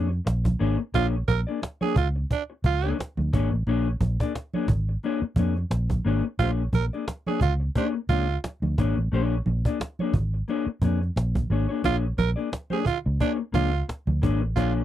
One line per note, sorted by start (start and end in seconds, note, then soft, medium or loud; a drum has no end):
0.00 0.19 F2 medium
0.09 muted clean electric guitar stroke medium
0.09 cajon slap soft
0.25 0.53 A#1 loud
0.25 muted clean electric guitar stroke soft
0.25 cajon slap loud
0.25 muted conga soft
0.44 muted clean electric guitar stroke soft
0.44 cajon bass medium
0.44 cajon slap soft
0.44 high conga medium
0.44 low conga medium
0.59 0.76 G#1 medium
0.59 0.79 A#3 medium
0.59 0.78 D4 medium
0.59 0.78 G#4 loud
0.59 0.77 C#5 loud
0.59 muted conga soft
0.79 muted clean electric guitar stroke soft
0.94 1.21 A#1 medium
0.94 1.14 A#3 medium
0.94 1.14 D4 medium
0.94 1.06 F4 loud
0.94 1.14 G#4 medium
0.94 1.14 C#5 loud
0.94 cajon bass loud
1.28 1.43 A#1 medium
1.28 1.39 A#4 loud
1.28 muted clean electric guitar stroke soft
1.28 cajon bass medium
1.28 muted conga soft
1.28 high conga medium
1.47 1.60 A#3 medium
1.47 1.60 D4 medium
1.47 1.60 G#4 medium
1.47 1.59 D5 medium
1.47 cajon slap soft
1.61 muted clean electric guitar stroke soft
1.61 cajon slap loud
1.61 muted conga soft
1.81 1.96 A#3 medium
1.81 1.96 D4 medium
1.81 1.97 G#4 medium
1.81 1.94 G#4 medium
1.81 1.97 C#5 medium
1.81 high conga medium
1.96 2.23 C#2 medium
1.96 2.08 F4 medium
1.96 muted clean electric guitar stroke soft
1.96 cajon bass loud
1.96 muted conga soft
1.96 low conga medium
2.16 muted clean electric guitar stroke soft
2.30 2.43 D4 medium
2.30 muted clean electric guitar stroke soft
2.30 cajon bass loud
2.30 cajon slap medium
2.30 muted conga soft
2.50 muted clean electric guitar stroke soft
2.64 2.92 C#2 medium
2.64 2.92 F4 loud
2.64 cajon bass medium
2.64 high conga soft
2.84 2.97 A#3 medium
2.84 2.98 D4 medium
2.84 2.98 G#4 medium
2.84 2.98 C#5 medium
2.84 cajon slap soft
2.99 muted clean electric guitar stroke soft
2.99 cajon slap loud
2.99 muted conga soft
3.17 3.30 D2 medium
3.17 muted clean electric guitar stroke medium
3.17 cajon slap soft
3.17 high conga medium
3.17 low conga medium
3.33 3.48 G#1 medium
3.33 3.52 A#3 medium
3.33 3.52 D4 medium
3.33 3.52 G#4 medium
3.33 3.51 C#5 loud
3.33 cajon bass loud
3.52 3.64 A1 medium
3.52 muted clean electric guitar stroke soft
3.67 3.94 A#1 medium
3.67 3.87 A#3 medium
3.67 3.87 D4 loud
3.67 3.87 G#4 loud
3.67 3.87 C#5 medium
3.67 cajon slap soft
3.67 muted conga soft
4.01 4.16 A#1 loud
4.01 muted clean electric guitar stroke soft
4.01 cajon bass medium
4.01 muted conga soft
4.01 high conga medium
4.20 4.33 A#3 soft
4.20 4.33 D4 medium
4.20 4.33 G#4 medium
4.20 4.32 D5 medium
4.20 cajon bass loud
4.35 muted clean electric guitar stroke soft
4.35 cajon slap loud
4.54 4.68 A#3 medium
4.54 4.68 D4 medium
4.54 4.69 G#4 medium
4.54 4.69 C#5 medium
4.54 high conga medium
4.68 4.96 G#1 medium
4.68 muted clean electric guitar stroke soft
4.68 cajon bass loud
4.68 muted conga soft
4.68 low conga loud
4.89 muted clean electric guitar stroke soft
5.03 5.23 A#3 medium
5.03 5.22 D4 medium
5.03 5.22 G#4 medium
5.03 5.21 C#5 medium
5.03 cajon slap medium
5.03 muted conga soft
5.22 muted fingered electric bass stroke soft
5.22 muted clean electric guitar stroke soft
5.36 5.64 F2 medium
5.36 5.53 A#3 medium
5.36 5.53 D4 medium
5.36 5.53 G#4 medium
5.36 5.54 C#5 medium
5.36 cajon bass medium
5.36 muted conga soft
5.36 high conga soft
5.56 muted clean electric guitar stroke soft
5.56 cajon slap soft
5.71 5.98 A#1 medium
5.71 muted clean electric guitar stroke soft
5.71 cajon slap loud
5.71 muted conga soft
5.90 muted clean electric guitar stroke soft
5.90 cajon bass medium
5.90 cajon slap soft
5.90 high conga medium
5.90 low conga medium
6.05 6.21 G#1 medium
6.05 6.25 A#3 medium
6.05 6.25 D4 medium
6.05 6.24 G#4 medium
6.05 6.24 C#5 medium
6.25 muted clean electric guitar stroke soft
6.39 6.67 A#1 medium
6.39 6.61 A#3 medium
6.39 6.61 D4 medium
6.39 6.51 F4 loud
6.39 6.62 G#4 medium
6.39 6.62 C#5 medium
6.39 cajon bass loud
6.39 muted conga soft
6.73 6.88 A#1 loud
6.73 6.85 A#4 medium
6.73 muted clean electric guitar stroke soft
6.73 cajon bass medium
6.73 muted conga soft
6.73 high conga medium
6.93 7.05 A#3 soft
6.93 7.05 D4 soft
6.93 7.05 G#4 medium
6.93 7.05 D5 medium
6.93 cajon slap soft
7.06 muted clean electric guitar stroke soft
7.06 cajon slap loud
7.06 muted conga soft
7.27 7.40 A#3 medium
7.27 7.41 D4 medium
7.27 7.41 G#4 medium
7.27 7.39 G#4 medium
7.27 7.42 C#5 medium
7.27 high conga medium
7.41 7.68 C#2 medium
7.41 7.53 F4 loud
7.41 muted clean electric guitar stroke soft
7.41 cajon bass medium
7.41 low conga loud
7.60 muted clean electric guitar stroke soft
7.75 7.97 A#3 medium
7.75 7.94 D4 medium
7.75 7.88 D4 medium
7.75 7.94 G#4 medium
7.75 7.93 C#5 medium
7.75 cajon bass loud
7.75 cajon slap medium
7.94 muted clean electric guitar stroke soft
8.09 8.36 C#2 medium
8.09 8.25 A#3 medium
8.09 8.26 D4 medium
8.09 8.37 F4 loud
8.09 8.26 G#4 medium
8.09 8.26 C#5 medium
8.09 cajon bass loud
8.09 high conga medium
8.30 muted clean electric guitar stroke soft
8.30 cajon slap soft
8.44 muted clean electric guitar stroke soft
8.44 cajon slap loud
8.44 muted conga soft
8.62 8.74 D2 medium
8.62 muted clean electric guitar stroke soft
8.62 cajon slap soft
8.62 high conga medium
8.62 low conga medium
8.78 8.93 G#1 medium
8.78 8.97 A#3 medium
8.78 8.98 D4 medium
8.78 8.98 G#4 medium
8.78 8.97 C#5 medium
8.78 cajon bass loud
8.97 9.09 A1 medium
8.97 muted clean electric guitar stroke soft
9.12 9.39 A#1 medium
9.12 9.33 A#3 medium
9.12 9.34 D4 medium
9.12 9.34 G#4 loud
9.12 9.35 C#5 loud
9.12 cajon slap soft
9.46 9.61 A#1 loud
9.46 muted clean electric guitar stroke medium
9.46 cajon slap soft
9.46 high conga medium
9.65 9.78 A#3 soft
9.65 9.78 D4 medium
9.65 9.78 G#4 medium
9.65 9.77 D5 medium
9.65 cajon bass medium
9.65 cajon slap soft
9.80 muted clean electric guitar stroke soft
9.80 cajon slap loud
9.80 muted conga soft
9.99 10.14 A#3 medium
9.99 10.15 D4 medium
9.99 10.15 G#4 medium
9.99 10.15 C#5 medium
9.99 high conga medium
10.14 10.41 G#1 medium
10.14 muted clean electric guitar stroke soft
10.14 cajon bass medium
10.14 low conga loud
10.34 muted clean electric guitar stroke soft
10.48 10.67 A#3 medium
10.48 10.68 D4 medium
10.48 10.67 G#4 medium
10.48 10.66 C#5 medium
10.48 cajon slap medium
10.48 muted conga soft
10.67 muted fingered electric bass stroke soft
10.67 muted clean electric guitar stroke soft
10.82 11.09 F2 medium
10.82 10.98 A#3 medium
10.82 10.98 D4 medium
10.82 10.99 G#4 medium
10.82 10.99 C#5 medium
10.82 cajon bass medium
10.82 muted conga soft
10.82 high conga soft
11.02 muted clean electric guitar stroke soft
11.02 cajon slap soft
11.16 11.43 A#1 medium
11.16 muted clean electric guitar stroke soft
11.16 cajon slap medium
11.16 muted conga soft
11.35 muted clean electric guitar stroke soft
11.35 cajon bass medium
11.35 cajon slap soft
11.35 high conga medium
11.35 low conga medium
11.50 11.65 G#1 medium
11.50 11.65 A#3 medium
11.50 11.66 D4 medium
11.50 11.66 G#4 medium
11.50 11.67 C#5 medium
11.50 muted conga soft
11.69 11.82 A#3 medium
11.69 11.82 D4 medium
11.69 11.82 G#4 medium
11.69 11.81 C#5 medium
11.84 12.11 A#1 medium
11.84 12.03 A#3 medium
11.84 12.04 D4 medium
11.84 11.96 F4 loud
11.84 12.04 G#4 medium
11.84 12.04 C#5 medium
11.84 cajon bass loud
12.17 12.34 A#1 loud
12.17 12.30 A#4 loud
12.17 muted clean electric guitar stroke soft
12.17 cajon bass medium
12.17 high conga medium
12.36 12.49 A#3 medium
12.36 12.49 D4 medium
12.36 12.49 G#4 medium
12.36 12.49 D5 medium
12.36 cajon slap soft
12.51 muted clean electric guitar stroke soft
12.51 cajon slap loud
12.51 muted conga soft
12.70 12.84 A#3 medium
12.70 12.85 D4 medium
12.70 12.85 G#4 medium
12.70 12.84 G#4 loud
12.70 12.85 C#5 medium
12.70 high conga medium
12.85 12.98 F4 medium
12.85 muted clean electric guitar stroke soft
12.85 muted fingered electric bass stroke soft
12.85 cajon bass medium
12.85 low conga loud
13.06 13.18 C#2 medium
13.06 muted clean electric guitar stroke soft
13.20 13.40 A#3 medium
13.20 13.32 D4 medium
13.20 13.39 D4 medium
13.20 13.38 G#4 medium
13.20 13.37 C#5 medium
13.20 cajon bass loud
13.20 cajon slap medium
13.20 muted conga soft
13.39 muted clean electric guitar stroke soft
13.52 13.81 C#2 medium
13.52 13.69 A#3 medium
13.52 13.69 D4 medium
13.52 13.81 F4 loud
13.52 13.69 G#4 medium
13.52 13.70 C#5 medium
13.52 cajon bass loud
13.52 muted conga soft
13.52 high conga medium
13.73 muted clean electric guitar stroke medium
13.73 cajon slap soft
13.88 muted clean electric guitar stroke soft
13.88 cajon slap loud
14.07 14.19 D2 medium
14.07 muted clean electric guitar stroke soft
14.07 cajon slap soft
14.07 high conga medium
14.07 low conga medium
14.22 14.41 G#1 medium
14.22 14.42 A#3 medium
14.22 14.42 D4 medium
14.22 14.42 G#4 loud
14.22 14.41 C#5 medium
14.22 cajon bass loud
14.22 muted conga soft
14.41 14.53 A1 medium
14.41 muted clean electric guitar stroke soft
14.55 14.80 A#1 medium
14.55 14.80 A#3 loud
14.55 14.80 D4 medium
14.55 14.74 F4 medium
14.55 14.81 G#4 loud
14.55 14.81 C#5 loud
14.55 cajon bass loud
14.55 cajon slap loud